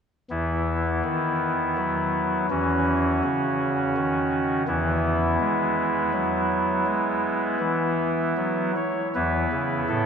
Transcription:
0, 0, Header, 1, 2, 480
1, 0, Start_track
1, 0, Key_signature, 4, "major"
1, 0, Tempo, 735294
1, 198, Time_signature, 3, 2, 24, 8
1, 2115, Tempo, 724638
1, 4515, Tempo, 756620
1, 6542, End_track
2, 0, Start_track
2, 0, Title_t, "Pipe organ"
2, 0, Program_c, 0, 19
2, 195, Note_on_c, 0, 52, 64
2, 197, Note_on_c, 0, 59, 40
2, 198, Note_on_c, 0, 40, 64
2, 199, Note_on_c, 0, 64, 39
2, 667, Note_off_c, 0, 52, 0
2, 669, Note_off_c, 0, 40, 0
2, 680, Note_on_c, 0, 51, 68
2, 1144, Note_off_c, 0, 51, 0
2, 1155, Note_on_c, 0, 54, 62
2, 1609, Note_off_c, 0, 59, 0
2, 1610, Note_off_c, 0, 64, 0
2, 1619, Note_off_c, 0, 54, 0
2, 1632, Note_on_c, 0, 61, 40
2, 1634, Note_on_c, 0, 66, 42
2, 1635, Note_on_c, 0, 40, 66
2, 1635, Note_on_c, 0, 52, 63
2, 2100, Note_off_c, 0, 40, 0
2, 2100, Note_off_c, 0, 52, 0
2, 2115, Note_on_c, 0, 49, 63
2, 2579, Note_off_c, 0, 49, 0
2, 2595, Note_on_c, 0, 51, 65
2, 3037, Note_off_c, 0, 61, 0
2, 3038, Note_off_c, 0, 66, 0
2, 3051, Note_off_c, 0, 51, 0
2, 3066, Note_on_c, 0, 59, 49
2, 3066, Note_on_c, 0, 64, 47
2, 3067, Note_on_c, 0, 40, 76
2, 3067, Note_on_c, 0, 52, 69
2, 3532, Note_off_c, 0, 40, 0
2, 3532, Note_off_c, 0, 52, 0
2, 3547, Note_on_c, 0, 56, 76
2, 4018, Note_off_c, 0, 56, 0
2, 4031, Note_on_c, 0, 54, 73
2, 4499, Note_off_c, 0, 54, 0
2, 4513, Note_on_c, 0, 56, 73
2, 4969, Note_off_c, 0, 56, 0
2, 4980, Note_on_c, 0, 52, 78
2, 5452, Note_off_c, 0, 52, 0
2, 5469, Note_on_c, 0, 54, 66
2, 5692, Note_off_c, 0, 59, 0
2, 5693, Note_off_c, 0, 64, 0
2, 5710, Note_off_c, 0, 54, 0
2, 5720, Note_on_c, 0, 73, 89
2, 5927, Note_off_c, 0, 73, 0
2, 5965, Note_on_c, 0, 71, 67
2, 5966, Note_on_c, 0, 64, 36
2, 5967, Note_on_c, 0, 40, 54
2, 5967, Note_on_c, 0, 59, 37
2, 5968, Note_on_c, 0, 52, 59
2, 6167, Note_off_c, 0, 40, 0
2, 6168, Note_off_c, 0, 52, 0
2, 6199, Note_on_c, 0, 49, 54
2, 6401, Note_off_c, 0, 49, 0
2, 6424, Note_off_c, 0, 71, 0
2, 6434, Note_on_c, 0, 69, 87
2, 6436, Note_on_c, 0, 45, 58
2, 6542, Note_off_c, 0, 45, 0
2, 6542, Note_off_c, 0, 59, 0
2, 6542, Note_off_c, 0, 64, 0
2, 6542, Note_off_c, 0, 69, 0
2, 6542, End_track
0, 0, End_of_file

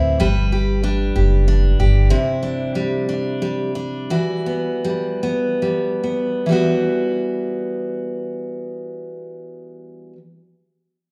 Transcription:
0, 0, Header, 1, 3, 480
1, 0, Start_track
1, 0, Key_signature, 1, "minor"
1, 0, Tempo, 643777
1, 150, Time_signature, 6, 3, 24, 8
1, 2551, Tempo, 707547
1, 3511, Tempo, 777202
1, 3991, Tempo, 846262
1, 4471, Tempo, 886263
1, 6991, End_track
2, 0, Start_track
2, 0, Title_t, "Steel-string acoustic guitar"
2, 0, Program_c, 0, 25
2, 0, Note_on_c, 0, 45, 69
2, 0, Note_on_c, 0, 60, 57
2, 0, Note_on_c, 0, 64, 46
2, 0, Note_on_c, 0, 71, 53
2, 144, Note_off_c, 0, 71, 0
2, 146, Note_off_c, 0, 45, 0
2, 147, Note_on_c, 0, 55, 61
2, 153, Note_on_c, 0, 71, 50
2, 196, Note_off_c, 0, 64, 0
2, 198, Note_off_c, 0, 60, 0
2, 390, Note_on_c, 0, 67, 44
2, 623, Note_on_c, 0, 62, 51
2, 859, Note_off_c, 0, 67, 0
2, 862, Note_on_c, 0, 67, 49
2, 1099, Note_off_c, 0, 62, 0
2, 1102, Note_on_c, 0, 62, 51
2, 1337, Note_off_c, 0, 67, 0
2, 1340, Note_on_c, 0, 67, 46
2, 1568, Note_on_c, 0, 48, 69
2, 1570, Note_off_c, 0, 67, 0
2, 1573, Note_on_c, 0, 64, 45
2, 1579, Note_off_c, 0, 71, 0
2, 1625, Note_off_c, 0, 62, 0
2, 1809, Note_on_c, 0, 62, 47
2, 2052, Note_off_c, 0, 55, 0
2, 2052, Note_on_c, 0, 55, 44
2, 2293, Note_off_c, 0, 62, 0
2, 2302, Note_on_c, 0, 62, 48
2, 2546, Note_off_c, 0, 55, 0
2, 2549, Note_on_c, 0, 55, 47
2, 2767, Note_off_c, 0, 62, 0
2, 2775, Note_on_c, 0, 62, 46
2, 3013, Note_on_c, 0, 52, 53
2, 3014, Note_off_c, 0, 48, 0
2, 3015, Note_off_c, 0, 64, 0
2, 3018, Note_on_c, 0, 66, 50
2, 3062, Note_off_c, 0, 62, 0
2, 3258, Note_on_c, 0, 59, 39
2, 3514, Note_off_c, 0, 55, 0
2, 3516, Note_on_c, 0, 55, 46
2, 3751, Note_off_c, 0, 59, 0
2, 3753, Note_on_c, 0, 59, 44
2, 3993, Note_off_c, 0, 55, 0
2, 3995, Note_on_c, 0, 55, 42
2, 4228, Note_off_c, 0, 59, 0
2, 4230, Note_on_c, 0, 59, 39
2, 4469, Note_off_c, 0, 52, 0
2, 4471, Note_on_c, 0, 52, 45
2, 4484, Note_off_c, 0, 55, 0
2, 4486, Note_on_c, 0, 55, 48
2, 4488, Note_off_c, 0, 66, 0
2, 4494, Note_off_c, 0, 59, 0
2, 4496, Note_on_c, 0, 59, 53
2, 4505, Note_on_c, 0, 66, 54
2, 6456, Note_off_c, 0, 52, 0
2, 6471, Note_off_c, 0, 55, 0
2, 6481, Note_off_c, 0, 59, 0
2, 6490, Note_off_c, 0, 66, 0
2, 6991, End_track
3, 0, Start_track
3, 0, Title_t, "Upright bass"
3, 0, Program_c, 1, 32
3, 0, Note_on_c, 1, 38, 62
3, 140, Note_off_c, 1, 38, 0
3, 156, Note_on_c, 1, 31, 69
3, 837, Note_off_c, 1, 31, 0
3, 864, Note_on_c, 1, 30, 74
3, 1311, Note_off_c, 1, 30, 0
3, 1336, Note_on_c, 1, 31, 76
3, 1561, Note_off_c, 1, 31, 0
3, 6991, End_track
0, 0, End_of_file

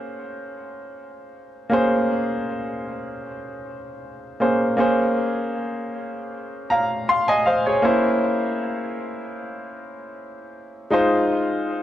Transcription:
0, 0, Header, 1, 2, 480
1, 0, Start_track
1, 0, Key_signature, -5, "minor"
1, 0, Tempo, 766284
1, 1076, Time_signature, 4, 2, 24, 8
1, 7408, End_track
2, 0, Start_track
2, 0, Title_t, "Grand piano"
2, 0, Program_c, 0, 0
2, 0, Control_c, 0, 64, 127
2, 0, Note_on_c, 0, 58, 62
2, 0, Note_on_c, 0, 61, 57
2, 0, Note_on_c, 0, 68, 62
2, 0, Note_on_c, 0, 72, 75
2, 1043, Note_off_c, 0, 58, 0
2, 1049, Note_off_c, 0, 61, 0
2, 1050, Note_off_c, 0, 68, 0
2, 1055, Note_off_c, 0, 72, 0
2, 1062, Note_on_c, 0, 58, 63
2, 1071, Note_on_c, 0, 61, 59
2, 1077, Note_on_c, 0, 68, 65
2, 1086, Note_on_c, 0, 72, 72
2, 2725, Note_off_c, 0, 58, 0
2, 2730, Note_off_c, 0, 61, 0
2, 2733, Note_off_c, 0, 68, 0
2, 2737, Note_off_c, 0, 72, 0
2, 2757, Note_on_c, 0, 58, 51
2, 2761, Note_on_c, 0, 61, 48
2, 2762, Note_on_c, 0, 68, 48
2, 2767, Note_on_c, 0, 72, 61
2, 2977, Note_off_c, 0, 58, 0
2, 2985, Note_off_c, 0, 61, 0
2, 2987, Note_on_c, 0, 58, 63
2, 2989, Note_off_c, 0, 68, 0
2, 2995, Note_on_c, 0, 61, 66
2, 2999, Note_off_c, 0, 72, 0
2, 2999, Note_on_c, 0, 68, 62
2, 3005, Control_c, 0, 64, 0
2, 3008, Note_on_c, 0, 72, 74
2, 3111, Control_c, 0, 64, 127
2, 4175, Note_off_c, 0, 68, 0
2, 4179, Note_off_c, 0, 72, 0
2, 4197, Note_on_c, 0, 82, 58
2, 4203, Note_on_c, 0, 77, 50
2, 4426, Note_off_c, 0, 82, 0
2, 4428, Note_off_c, 0, 77, 0
2, 4441, Note_on_c, 0, 84, 70
2, 4444, Note_on_c, 0, 77, 56
2, 4561, Note_on_c, 0, 80, 75
2, 4563, Note_off_c, 0, 84, 0
2, 4564, Note_off_c, 0, 77, 0
2, 4565, Note_on_c, 0, 75, 64
2, 4669, Note_off_c, 0, 80, 0
2, 4671, Note_off_c, 0, 75, 0
2, 4672, Note_on_c, 0, 77, 62
2, 4678, Note_on_c, 0, 72, 54
2, 4798, Note_off_c, 0, 77, 0
2, 4799, Note_on_c, 0, 73, 62
2, 4801, Note_off_c, 0, 72, 0
2, 4802, Note_on_c, 0, 68, 56
2, 4888, Note_off_c, 0, 58, 0
2, 4892, Note_off_c, 0, 61, 0
2, 4900, Note_on_c, 0, 58, 68
2, 4906, Note_on_c, 0, 61, 61
2, 4914, Note_on_c, 0, 64, 65
2, 4919, Note_on_c, 0, 72, 73
2, 4924, Control_c, 0, 64, 0
2, 5031, Note_off_c, 0, 73, 0
2, 5032, Note_off_c, 0, 68, 0
2, 5038, Control_c, 0, 64, 127
2, 6804, Note_off_c, 0, 58, 0
2, 6807, Note_off_c, 0, 61, 0
2, 6811, Note_off_c, 0, 64, 0
2, 6813, Note_off_c, 0, 72, 0
2, 6831, Note_on_c, 0, 56, 63
2, 6836, Note_on_c, 0, 63, 62
2, 6842, Note_on_c, 0, 65, 67
2, 6847, Control_c, 0, 64, 0
2, 6850, Note_on_c, 0, 72, 70
2, 6971, Control_c, 0, 64, 127
2, 7408, Note_off_c, 0, 56, 0
2, 7408, Note_off_c, 0, 63, 0
2, 7408, Note_off_c, 0, 65, 0
2, 7408, Note_off_c, 0, 72, 0
2, 7408, End_track
0, 0, End_of_file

